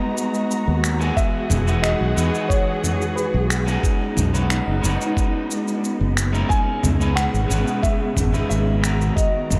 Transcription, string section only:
0.00 1.14 G#3 medium
0.00 1.15 B3 medium
0.00 3.80 F#4 medium
0.00 1.14 A#5 medium
1.17 3.81 E3 medium
1.17 3.81 G#4 medium
1.17 3.81 F#5 medium
3.83 9.60 G#3 medium
3.83 9.13 B3 medium
3.83 6.47 D#4 medium
6.50 9.14 B2 medium
6.50 9.14 C#3 medium
9.17 9.60 B3 medium
9.17 9.60 F#4 medium
9.17 9.60 A#5 medium

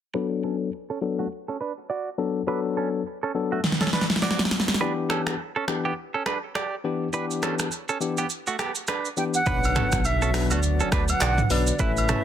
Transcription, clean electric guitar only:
0.15 0.26 D4 medium
0.15 0.26 B4 medium
0.44 0.55 C#4 medium
0.44 0.55 A4 medium
0.90 0.98 C#4 medium
0.90 0.98 A4 medium
1.19 1.27 A3 medium
1.19 1.27 F#4 medium
1.48 1.57 C#4 soft
1.48 1.56 A4 medium
1.61 1.72 D4 medium
1.61 1.71 B4 medium
1.90 2.09 F#4 medium
1.90 2.08 D5 medium
2.48 2.59 D4 medium
2.48 2.59 B4 loud
2.77 2.88 C#4 medium
2.77 2.88 A4 medium
3.23 3.31 C#4 medium
3.23 3.31 A4 medium
3.52 3.60 A3 medium
3.52 3.60 F#4 medium
3.81 3.90 C#4 medium
3.81 3.89 A4 medium
3.94 4.05 D4 medium
3.94 4.04 B4 medium
4.23 4.42 F#4 medium
4.23 4.41 D5 medium
4.81 4.92 D4 medium
4.81 4.92 B4 loud
5.10 5.21 C#4 medium
5.10 5.21 A4 medium
5.56 5.64 C#4 medium
5.56 5.64 A4 medium
5.85 5.93 B3 medium
5.85 5.93 G4 medium
6.14 6.23 C#4 soft
6.14 6.22 A4 medium
6.27 6.38 D4 medium
6.27 6.37 B4 medium
6.56 6.75 G4 medium
6.56 6.74 D5 medium
7.14 7.25 D4 medium
7.14 7.25 B4 loud
7.43 7.54 C#4 medium
7.43 7.54 A4 medium
7.89 7.97 C#4 medium
7.89 7.97 A4 medium
8.18 8.27 B3 medium
8.18 8.26 G4 medium
8.48 8.56 A3 medium
8.48 8.55 F#4 medium
8.60 8.71 B3 medium
8.60 8.70 G4 medium
8.89 9.08 D4 medium
8.89 9.07 B4 medium
9.47 9.58 D4 medium
9.47 9.58 B4 loud
9.76 9.87 C#4 medium
9.76 9.87 A4 medium
10.22 10.30 C#4 medium
10.22 10.30 A4 medium
10.51 10.60 A3 medium
10.51 10.59 F#4 medium
10.81 10.89 C#4 medium
10.81 10.88 A4 medium
10.93 11.04 D4 medium
10.93 11.03 B4 medium
11.22 11.41 F#4 medium
11.22 11.41 D5 medium
11.80 11.91 E4 medium
11.80 11.91 B4 loud
12.09 12.20 C#4 medium
12.09 12.20 A4 medium

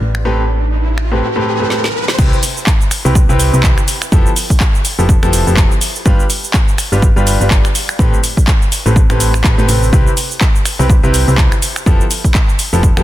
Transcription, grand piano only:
0.25 0.41 A2 medium
0.25 0.41 C4 medium
0.25 0.41 G4 medium
0.25 0.41 A4 medium
0.25 0.41 B4 loud
1.11 1.25 A2 medium
1.11 1.25 C4 medium
1.11 1.25 G4 medium
1.11 1.25 A4 medium
1.11 1.25 B4 medium
1.36 1.57 A2 medium
1.36 1.57 C4 medium
1.36 1.57 G4 medium
1.36 1.57 A4 medium
1.36 1.57 B4 medium
1.60 1.84 A2 medium
1.60 1.84 C4 medium
1.60 1.84 G4 medium
1.60 1.84 A4 medium
1.60 1.84 B4 medium
2.19 2.35 C3 loud
2.19 2.35 C4 medium
2.19 2.35 E4 medium
2.19 2.35 G4 medium
2.19 2.35 B4 loud
3.05 3.18 C3 medium
3.05 3.18 C4 medium
3.05 3.19 E4 medium
3.05 3.19 G4 medium
3.05 3.19 B4 medium
3.29 3.50 C3 medium
3.29 3.50 C4 medium
3.29 3.50 E4 medium
3.29 3.50 G4 medium
3.29 3.50 B4 loud
3.53 3.77 C3 medium
3.53 3.77 C4 medium
3.53 3.77 E4 medium
3.53 3.77 G4 medium
3.53 3.77 B4 medium
4.12 4.28 F3 loud
4.12 4.28 B3 medium
4.12 4.28 E4 medium
4.12 4.28 G4 medium
4.12 4.28 A4 loud
4.99 5.12 F3 medium
4.99 5.12 B3 medium
4.99 5.12 E4 medium
4.99 5.12 G4 medium
4.99 5.12 A4 medium
5.23 5.44 F3 medium
5.23 5.44 B3 medium
5.23 5.44 E4 medium
5.23 5.44 G4 medium
5.23 5.44 A4 loud
5.47 5.71 F3 medium
5.47 5.71 B3 medium
5.47 5.71 E4 medium
5.47 5.71 G4 medium
5.47 5.71 A4 medium
6.06 6.22 G3 loud
6.06 6.22 D4 medium
6.06 6.22 F4 loud
6.06 6.22 G4 medium
6.06 6.22 B4 loud
6.92 7.06 G3 medium
6.92 7.06 D4 medium
6.92 7.06 F4 medium
6.92 7.06 G4 medium
6.92 7.06 B4 medium
7.16 7.37 G3 medium
7.16 7.37 D4 medium
7.16 7.37 F4 medium
7.16 7.37 G4 medium
7.16 7.37 B4 loud
7.41 7.64 G3 medium
7.41 7.64 D4 medium
7.41 7.64 F4 medium
7.41 7.64 G4 medium
7.41 7.64 B4 medium
7.99 8.15 A2 loud
7.99 8.15 C4 medium
7.99 8.15 G4 medium
7.99 8.15 A4 medium
7.99 8.16 B4 loud
8.86 8.99 A2 medium
8.86 8.99 C4 medium
8.86 8.99 G4 medium
8.86 8.99 A4 medium
8.86 8.99 B4 medium
9.10 9.31 A2 medium
9.10 9.31 C4 medium
9.10 9.31 G4 medium
9.10 9.31 A4 medium
9.10 9.31 B4 loud
9.44 9.55 A2 medium
9.44 9.55 C4 medium
9.44 9.55 G4 medium
9.44 9.55 A4 medium
9.44 9.55 B4 medium
9.58 9.66 A2 loud
9.58 9.66 C4 medium
9.58 9.66 G4 medium
9.58 9.66 A4 medium
9.58 9.66 B4 loud
9.69 9.90 C3 medium
9.69 9.90 C4 medium
9.69 9.90 G4 medium
9.69 9.90 A4 medium
9.69 9.90 B4 medium
9.93 10.09 C3 loud
9.93 10.09 C4 medium
9.93 10.09 E4 medium
9.93 10.09 G4 medium
9.93 10.09 B4 loud
10.79 10.93 C3 medium
10.79 10.93 C4 medium
10.79 10.93 E4 medium
10.79 10.93 G4 medium
10.79 10.93 B4 medium
11.03 11.24 C3 medium
11.03 11.24 C4 medium
11.03 11.24 E4 medium
11.03 11.24 G4 medium
11.03 11.24 B4 loud
11.28 11.51 C3 medium
11.28 11.51 C4 medium
11.28 11.51 E4 medium
11.28 11.51 G4 medium
11.28 11.51 B4 medium
11.86 12.03 F3 loud
11.86 12.03 B3 medium
11.86 12.03 E4 medium
11.86 12.03 G4 medium
11.86 12.03 A4 loud
12.73 12.86 F3 medium
12.73 12.86 B3 medium
12.73 12.86 E4 medium
12.73 12.86 G4 medium
12.73 12.86 A4 medium
12.97 13.03 F3 medium
12.97 13.03 B3 medium
12.97 13.03 E4 medium
12.97 13.03 G4 medium
12.97 13.03 A4 loud

